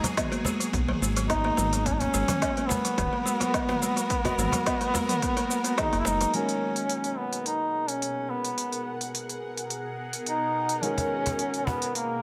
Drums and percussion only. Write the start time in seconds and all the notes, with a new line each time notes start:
0.03 cajon bass, open hi-hat, cabasa
0.17 kick, snare, mid tom, open hi-hat, cabasa
0.32 open hi-hat
0.45 cajon bass, cajon slap, cabasa
0.60 open hi-hat, cabasa
0.73 kick, open hi-hat, cabasa
0.89 mid tom
1.03 cabasa
1.16 open hi-hat, cabasa
1.30 kick, snare, open hi-hat, cabasa
1.45 snare
1.57 cajon slap, mid tom, cabasa
1.73 open hi-hat, cabasa
1.86 kick, open hi-hat, cabasa
2.00 cajon bass, open hi-hat
2.14 cabasa
2.28 cajon bass, mid tom, open hi-hat, cabasa
2.42 kick, snare, open hi-hat, cabasa
2.57 open hi-hat
2.69 cajon bass, cajon slap, cabasa
2.85 open hi-hat, cabasa
2.98 kick, mid tom, open hi-hat, cabasa
3.27 cabasa
3.41 cajon slap, open hi-hat, cabasa
3.54 kick, snare, open hi-hat, cabasa
3.68 cajon slap, mid tom
3.83 cabasa
3.97 open hi-hat, cabasa
4.10 kick, open hi-hat, cabasa
4.25 cajon bass, snare, open hi-hat
4.38 mid tom, cabasa
4.52 cajon bass, open hi-hat, cabasa
4.66 kick, snare, open hi-hat, cabasa
4.81 open hi-hat
4.95 cajon bass, cajon slap, cabasa
5.09 mid tom, open hi-hat, cabasa
5.22 kick, open hi-hat, cabasa
5.37 open hi-hat
5.51 cabasa
5.64 open hi-hat, cabasa
5.78 kick, snare, mid tom, open hi-hat, cabasa
5.93 snare, open hi-hat
6.05 cajon slap, cabasa
6.21 cajon slap, open hi-hat, cabasa
6.34 open hi-hat
6.49 open hi-hat
6.76 open hi-hat
6.89 open hi-hat
7.04 open hi-hat
7.33 open hi-hat
7.46 open hi-hat
7.88 open hi-hat
8.02 open hi-hat
8.45 open hi-hat
8.58 open hi-hat
8.72 open hi-hat
9.01 open hi-hat
9.15 open hi-hat
9.29 open hi-hat
9.57 open hi-hat
9.70 open hi-hat
10.13 open hi-hat
10.26 open hi-hat
10.69 open hi-hat
10.83 open hi-hat
10.98 cajon bass, open hi-hat
11.26 cajon bass, open hi-hat
11.39 open hi-hat
11.54 open hi-hat
11.67 cajon bass, cajon slap
11.82 open hi-hat
11.95 open hi-hat